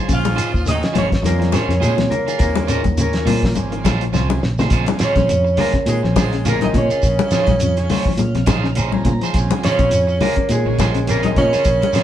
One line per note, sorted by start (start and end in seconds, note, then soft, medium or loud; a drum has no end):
0.00 0.13 F4 soft
0.00 0.12 G#4 soft
0.00 0.12 C5 medium
0.08 0.37 A#1 medium
0.08 0.24 C#3 loud
0.08 0.39 C#3 medium
0.08 0.39 F3 medium
0.08 0.39 G#3 medium
0.08 0.39 C#4 medium
0.08 1.79 F5 loud
0.08 kick medium
0.08 closed hi-hat medium
0.08 shekere medium
0.14 0.65 F3 medium
0.14 0.65 F4 loud
0.24 muted clean electric guitar stroke soft
0.24 closed hi-hat soft
0.24 high conga loud
0.36 0.53 D#3 medium
0.36 0.53 C#4 medium
0.36 0.52 F4 medium
0.36 0.52 G#4 medium
0.36 0.52 C5 medium
0.36 closed hi-hat medium
0.36 shekere medium
0.53 0.81 D#2 medium
0.53 muted clean electric guitar stroke soft
0.53 kick medium
0.53 shekere soft
0.66 0.96 C#3 medium
0.66 0.82 D#3 medium
0.66 0.96 F3 medium
0.66 0.96 G#3 medium
0.66 0.96 C#4 medium
0.66 0.76 D#5 loud
0.66 closed hi-hat medium
0.66 low conga medium
0.66 shekere medium
0.70 0.83 D#3 medium
0.70 0.83 D#4 medium
0.81 muted clean electric guitar stroke soft
0.81 snare medium
0.81 closed hi-hat soft
0.81 shekere soft
0.93 1.22 G#1 medium
0.93 1.11 F3 medium
0.93 1.10 C#4 medium
0.93 1.09 F4 medium
0.93 1.09 G#4 medium
0.93 1.08 C5 medium
0.93 closed hi-hat medium
0.93 high conga medium
0.93 low conga medium
0.98 1.12 C#3 medium
0.98 1.10 C#4 medium
0.98 1.05 C#5 loud
1.10 muted clean electric guitar stroke soft
1.10 kick medium
1.10 snare medium
1.10 closed hi-hat soft
1.22 1.51 F2 loud
1.22 1.54 C#3 medium
1.22 1.32 D#3 medium
1.22 1.54 F3 medium
1.22 1.54 G#3 medium
1.22 2.10 A#4 medium
1.22 muted clean electric guitar stroke soft
1.22 closed hi-hat medium
1.22 high conga medium
1.22 shekere medium
1.26 1.53 A#2 medium
1.26 1.52 A#3 medium
1.26 1.55 C4 medium
1.26 snare soft
1.39 1.56 F3 medium
1.39 muted clean electric guitar stroke soft
1.39 snare soft
1.39 closed hi-hat soft
1.52 1.81 C#3 medium
1.52 1.81 C#4 medium
1.52 1.72 F4 medium
1.52 1.72 G#4 medium
1.52 1.72 C5 loud
1.52 3.45 C#5 medium
1.52 snare medium
1.52 closed hi-hat soft
1.52 high conga medium
1.52 shekere medium
1.68 1.80 F2 medium
1.68 1.85 C#3 medium
1.68 snare soft
1.68 closed hi-hat soft
1.68 shekere soft
1.80 2.09 A#2 medium
1.80 2.12 C#3 medium
1.80 2.12 F3 medium
1.80 1.96 G#3 medium
1.80 1.97 C#4 medium
1.80 1.96 F4 medium
1.80 1.96 G#4 medium
1.80 1.90 G#4 medium
1.80 1.96 C5 medium
1.80 closed hi-hat medium
1.80 low conga medium
1.80 shekere medium
1.84 1.97 G#2 medium
1.84 2.12 G#3 medium
1.84 2.13 C4 medium
1.97 2.14 C3 medium
1.97 muted clean electric guitar stroke soft
1.97 snare medium
1.97 closed hi-hat soft
1.97 high conga medium
2.10 2.39 A#2 medium
2.10 2.39 A#3 medium
2.10 2.38 A#4 medium
2.10 muted clean electric guitar stroke soft
2.10 closed hi-hat soft
2.10 low conga medium
2.10 shekere soft
2.27 2.34 D#3 medium
2.27 2.44 F4 soft
2.27 2.43 G#4 soft
2.27 muted clean electric guitar stroke soft
2.27 closed hi-hat soft
2.27 shekere medium
2.38 2.82 D#2 medium
2.38 2.69 C#3 medium
2.38 2.70 F3 medium
2.38 2.70 G#3 medium
2.38 2.68 A#3 medium
2.38 2.70 C4 medium
2.38 2.69 A#4 medium
2.38 muted clean electric guitar stroke loud
2.38 kick medium
2.38 closed hi-hat medium
2.38 shekere medium
2.43 2.69 A#2 medium
2.56 muted clean electric guitar stroke soft
2.56 closed hi-hat soft
2.56 high conga medium
2.68 2.84 C#3 medium
2.68 2.82 A#3 medium
2.68 2.84 C#4 medium
2.68 2.83 F4 medium
2.68 2.83 G#4 medium
2.68 2.77 A#4 medium
2.68 2.82 C5 medium
2.68 closed hi-hat soft
2.68 shekere medium
2.73 2.85 A#2 medium
2.83 3.24 D#2 medium
2.83 muted clean electric guitar stroke soft
2.83 kick medium
2.83 closed hi-hat soft
2.83 high conga medium
2.83 shekere soft
2.98 4.10 A#2 medium
2.98 3.13 C#3 medium
2.98 3.27 C#3 medium
2.98 3.27 F3 medium
2.98 3.27 G#3 medium
2.98 4.11 A#3 medium
2.98 3.27 C#4 medium
2.98 5.13 A#4 medium
2.98 closed hi-hat medium
2.98 low conga medium
2.98 shekere medium
3.13 muted clean electric guitar stroke soft
3.13 snare medium
3.13 closed hi-hat soft
3.13 shekere soft
3.25 3.53 A#2 loud
3.25 3.43 C3 medium
3.25 3.42 C#4 medium
3.25 3.42 F4 medium
3.25 3.43 G#4 medium
3.25 3.43 C5 medium
3.25 open hi-hat medium
3.25 high conga medium
3.25 low conga medium
3.43 muted clean electric guitar stroke soft
3.43 kick medium
3.43 snare medium
3.55 3.83 G#1 loud
3.55 3.85 C#3 medium
3.55 3.85 F3 medium
3.55 3.85 G#3 medium
3.55 3.85 C4 medium
3.55 muted clean electric guitar stroke soft
3.55 closed hi-hat medium
3.55 high conga medium
3.55 shekere medium
3.72 3.88 D#3 medium
3.72 muted clean electric guitar stroke soft
3.72 closed hi-hat soft
3.84 4.12 A#1 medium
3.84 4.03 C#4 loud
3.84 4.03 F4 medium
3.84 4.04 G#4 medium
3.84 4.03 C5 loud
3.84 kick medium
3.84 snare medium
3.84 closed hi-hat medium
3.84 high conga medium
3.84 shekere medium
4.01 4.17 F3 medium
4.01 closed hi-hat soft
4.01 shekere soft
4.12 4.39 C2 medium
4.12 4.42 C#3 medium
4.12 4.42 F3 medium
4.12 4.42 G#3 medium
4.12 4.42 C4 loud
4.12 4.29 C#4 medium
4.12 4.30 F4 medium
4.12 4.29 C5 medium
4.12 muted clean electric guitar stroke medium
4.12 snare soft
4.12 high conga medium
4.12 shekere medium
4.30 4.46 C#3 medium
4.30 muted clean electric guitar stroke medium
4.30 high conga loud
4.43 4.69 A#1 medium
4.43 muted clean electric guitar stroke soft
4.43 snare medium
4.43 shekere soft
4.58 4.67 D#3 medium
4.58 4.71 F4 soft
4.58 4.71 G#4 medium
4.58 4.72 C5 medium
4.58 snare medium
4.58 low conga medium
4.58 shekere medium
4.69 4.86 A#1 loud
4.69 5.29 C#3 medium
4.69 5.29 F3 medium
4.69 5.29 G#3 medium
4.69 5.29 C4 loud
4.69 4.88 C#4 medium
4.69 4.87 F4 medium
4.69 4.87 G#4 medium
4.69 4.87 C5 medium
4.69 kick medium
4.69 closed hi-hat medium
4.69 shekere medium
4.86 5.03 D#3 medium
4.86 muted clean electric guitar stroke soft
4.86 closed hi-hat soft
4.86 high conga medium
4.99 5.55 C#3 medium
4.99 5.16 C#4 medium
4.99 5.55 C#4 medium
4.99 5.15 F4 medium
4.99 5.15 G#4 loud
4.99 5.15 C5 medium
4.99 muted fingered electric bass stroke soft
4.99 snare medium
4.99 closed hi-hat medium
4.99 shekere medium
5.04 6.77 C#5 medium
5.16 5.28 A#1 medium
5.16 5.32 C#3 medium
5.16 muted clean electric guitar stroke soft
5.16 kick medium
5.16 snare soft
5.16 closed hi-hat soft
5.16 high conga medium
5.16 shekere soft
5.28 5.56 F2 medium
5.28 closed hi-hat medium
5.28 low conga medium
5.28 shekere medium
5.44 muted clean electric guitar stroke soft
5.44 shekere soft
5.57 5.72 A#2 medium
5.57 5.71 A#3 medium
5.57 5.74 C#4 medium
5.57 5.74 F4 medium
5.57 5.74 G#4 medium
5.57 5.67 A#4 medium
5.57 5.74 C5 medium
5.57 open hi-hat medium
5.57 high conga medium
5.57 low conga medium
5.73 5.81 C#3 medium
5.73 muted fingered electric bass stroke soft
5.73 muted clean electric guitar stroke soft
5.73 kick medium
5.73 snare soft
5.73 closed hi-hat soft
5.86 6.00 G#2 medium
5.86 6.01 A#2 loud
5.86 5.96 D#3 medium
5.86 5.94 G#3 medium
5.86 6.01 G#3 medium
5.86 5.95 C4 medium
5.86 5.96 G#4 medium
5.86 muted clean electric guitar stroke soft
5.86 closed hi-hat medium
5.86 shekere medium
6.02 6.70 A#1 medium
6.02 6.24 C#3 medium
6.02 6.24 F3 medium
6.02 6.20 F3 medium
6.02 6.24 G#3 medium
6.02 6.24 C4 medium
6.02 muted clean electric guitar stroke soft
6.02 snare soft
6.14 6.42 G#2 medium
6.14 6.43 G#3 medium
6.14 6.35 F4 medium
6.14 6.35 G#4 medium
6.14 6.35 C5 medium
6.14 kick medium
6.14 snare medium
6.14 closed hi-hat medium
6.14 high conga loud
6.14 shekere medium
6.20 8.47 G#4 medium
6.33 6.48 C#3 medium
6.33 snare soft
6.33 closed hi-hat soft
6.33 shekere soft
6.45 6.60 A#2 medium
6.45 6.90 C#3 medium
6.45 6.90 F3 medium
6.45 6.90 G#3 medium
6.45 6.60 A#3 medium
6.45 6.90 C4 medium
6.45 6.61 C#4 medium
6.45 6.61 F4 medium
6.45 6.60 G#4 medium
6.45 8.60 A#4 loud
6.45 muted clean electric guitar stroke medium
6.45 closed hi-hat medium
6.45 low conga medium
6.45 shekere medium
6.61 6.67 D#3 medium
6.61 6.69 D#3 medium
6.61 6.67 D#4 medium
6.61 6.70 D#5 loud
6.61 muted clean electric guitar stroke soft
6.61 closed hi-hat soft
6.61 high conga medium
6.73 6.89 A#2 medium
6.73 8.43 C#3 loud
6.73 6.90 C#3 medium
6.73 8.44 C#4 medium
6.73 8.68 C#5 medium
6.73 muted clean electric guitar stroke soft
6.73 kick medium
6.73 closed hi-hat medium
6.73 low conga medium
6.73 shekere soft
6.90 7.07 F4 soft
6.90 7.06 G#4 soft
6.90 muted fingered electric bass stroke soft
6.90 closed hi-hat soft
6.90 shekere medium
7.03 7.18 A#1 loud
7.03 kick medium
7.03 closed hi-hat medium
7.03 shekere medium
7.19 muted clean electric guitar stroke soft
7.19 closed hi-hat soft
7.19 high conga loud
7.31 7.54 C#3 medium
7.31 7.54 F3 medium
7.31 7.48 F3 medium
7.31 7.54 G#3 medium
7.31 7.48 C#4 medium
7.31 7.54 D#4 medium
7.31 7.46 F4 medium
7.31 7.48 G#4 medium
7.31 7.46 C5 medium
7.31 muted fingered electric bass stroke soft
7.31 snare medium
7.31 closed hi-hat medium
7.31 shekere medium
7.47 7.60 A#1 loud
7.47 muted clean electric guitar stroke medium
7.47 kick medium
7.47 snare soft
7.47 closed hi-hat soft
7.47 high conga medium
7.47 shekere soft
7.60 7.88 F2 medium
7.60 7.77 C#3 medium
7.60 closed hi-hat medium
7.60 shekere medium
7.77 8.13 C#3 medium
7.77 8.13 F3 medium
7.77 8.13 G#3 medium
7.77 8.13 C#4 loud
7.77 muted clean electric guitar stroke medium
7.77 closed hi-hat soft
7.77 shekere soft
7.90 7.98 D#3 medium
7.90 8.06 C#4 medium
7.90 8.06 F4 medium
7.90 8.05 G#4 medium
7.90 8.05 C5 medium
7.90 8.17 C#5 medium
7.90 open hi-hat medium
7.90 high conga medium
7.90 low conga medium
8.05 8.13 F3 medium
8.05 muted fingered electric bass stroke soft
8.05 muted clean electric guitar stroke medium
8.05 kick medium
8.17 8.33 A#2 loud
8.17 8.46 F5 medium
8.17 muted clean electric guitar stroke soft
8.17 closed hi-hat medium
8.17 high conga medium
8.17 shekere medium
8.35 9.01 A#1 medium
8.35 8.42 C3 medium
8.35 muted clean electric guitar stroke soft
8.35 snare soft
8.35 closed hi-hat soft
8.46 8.69 C#3 medium
8.46 8.56 D#3 medium
8.46 8.70 F3 medium
8.46 8.70 G#3 medium
8.46 8.66 C#4 loud
8.46 8.70 D#4 loud
8.46 8.66 F4 loud
8.46 8.66 G#4 loud
8.46 8.66 C5 loud
8.46 8.74 F5 medium
8.46 kick medium
8.46 snare medium
8.46 closed hi-hat medium
8.46 high conga loud
8.46 shekere medium
8.64 8.79 C#3 medium
8.64 snare soft
8.64 shekere soft
8.75 8.92 C#4 medium
8.75 8.92 F4 medium
8.75 8.91 G#4 medium
8.75 8.92 C5 medium
8.75 9.30 A#5 medium
8.75 closed hi-hat medium
8.75 low conga medium
8.75 shekere medium
8.91 9.13 C#3 medium
8.91 9.13 F3 medium
8.91 9.13 G#3 medium
8.91 9.13 C4 loud
8.91 muted clean electric guitar stroke soft
8.91 high conga medium
9.05 9.20 A#2 medium
9.05 9.14 C#3 medium
9.05 muted clean electric guitar stroke medium
9.05 kick medium
9.05 closed hi-hat medium
9.05 low conga medium
9.05 shekere soft
9.21 9.28 F3 medium
9.21 9.39 F4 medium
9.21 9.38 G#4 medium
9.21 9.38 C5 medium
9.21 muted fingered electric bass stroke soft
9.21 closed hi-hat soft
9.21 shekere medium
9.34 9.49 A#1 loud
9.34 9.93 C#3 loud
9.34 9.93 F3 medium
9.34 9.93 G#3 medium
9.34 9.93 C4 loud
9.34 kick medium
9.34 snare soft
9.34 closed hi-hat medium
9.34 shekere medium
9.51 9.66 D#3 medium
9.51 muted clean electric guitar stroke soft
9.51 closed hi-hat soft
9.51 high conga loud
9.62 10.18 C#3 medium
9.62 9.79 C#4 medium
9.62 10.18 C#4 medium
9.62 9.79 F4 medium
9.62 9.79 G#4 medium
9.62 9.79 C5 medium
9.62 11.37 C#5 loud
9.62 muted fingered electric bass stroke soft
9.62 snare medium
9.62 closed hi-hat medium
9.62 shekere medium
9.79 9.90 A#1 loud
9.79 9.94 C#3 medium
9.79 muted clean electric guitar stroke soft
9.79 kick medium
9.79 closed hi-hat soft
9.79 shekere soft
9.90 10.18 F2 medium
9.90 closed hi-hat medium
9.90 shekere medium
10.07 muted clean electric guitar stroke soft
10.07 shekere soft
10.21 10.48 A#2 medium
10.21 10.48 A#3 medium
10.21 10.37 C#4 medium
10.21 10.36 F4 medium
10.21 10.35 G#4 medium
10.21 11.10 A#4 loud
10.21 10.35 C5 medium
10.21 open hi-hat medium
10.21 high conga medium
10.21 low conga medium
10.36 10.44 C#3 medium
10.36 muted fingered electric bass stroke soft
10.36 muted clean electric guitar stroke soft
10.36 kick medium
10.36 closed hi-hat soft
10.49 10.78 G#2 medium
10.49 10.65 A#2 loud
10.49 10.59 D#3 medium
10.49 10.77 G#3 medium
10.49 10.58 G#3 medium
10.49 10.59 C4 medium
10.49 10.80 G#4 medium
10.49 muted clean electric guitar stroke soft
10.49 closed hi-hat medium
10.49 shekere medium
10.65 11.33 A#1 loud
10.65 10.87 C#3 medium
10.65 10.87 F3 medium
10.65 10.82 F3 medium
10.65 10.87 G#3 medium
10.65 10.87 C#4 medium
10.65 muted clean electric guitar stroke soft
10.79 11.06 G#2 medium
10.79 11.06 G#3 medium
10.79 10.98 C#4 medium
10.79 10.98 F4 medium
10.79 12.03 G#4 medium
10.79 10.98 G#4 medium
10.79 10.98 C5 medium
10.79 kick medium
10.79 snare medium
10.79 closed hi-hat medium
10.79 high conga medium
10.79 shekere medium
10.95 11.11 C#3 medium
10.95 closed hi-hat soft
10.95 shekere soft
11.06 11.22 A#2 medium
11.06 11.52 C#3 medium
11.06 11.53 F3 medium
11.06 11.53 G#3 medium
11.06 11.22 A#3 medium
11.06 11.53 C4 loud
11.06 11.24 C#4 medium
11.06 11.23 F4 medium
11.06 11.23 G#4 medium
11.06 snare soft
11.06 closed hi-hat medium
11.06 shekere medium
11.10 12.03 A#4 loud
11.22 11.28 D#3 loud
11.22 11.31 D#3 medium
11.22 11.29 D#4 medium
11.22 11.31 D#5 loud
11.22 muted clean electric guitar stroke soft
11.22 closed hi-hat soft
11.22 high conga medium
11.35 11.52 A#2 medium
11.35 12.03 C#3 loud
11.35 11.53 C#3 medium
11.35 12.03 C#4 medium
11.35 12.03 C#5 medium
11.35 muted clean electric guitar stroke soft
11.35 kick medium
11.35 snare soft
11.35 closed hi-hat medium
11.35 low conga medium
11.35 shekere soft
11.53 11.69 F4 soft
11.53 11.69 G#4 medium
11.53 11.69 C5 medium
11.53 muted fingered electric bass stroke soft
11.53 snare soft
11.53 closed hi-hat soft
11.53 shekere medium
11.65 11.81 A#1 loud
11.65 kick medium
11.65 closed hi-hat medium
11.65 shekere medium
11.82 muted clean electric guitar stroke soft
11.82 closed hi-hat soft
11.82 high conga medium
11.93 12.03 C#3 medium
11.93 12.03 F3 medium
11.93 12.03 G#3 medium
11.93 12.03 C4 medium
11.93 12.03 C#4 medium
11.93 12.03 F4 medium
11.93 12.03 G#4 medium
11.93 12.03 C5 loud
11.93 muted fingered electric bass stroke soft
11.93 snare medium
11.93 closed hi-hat medium
11.93 shekere medium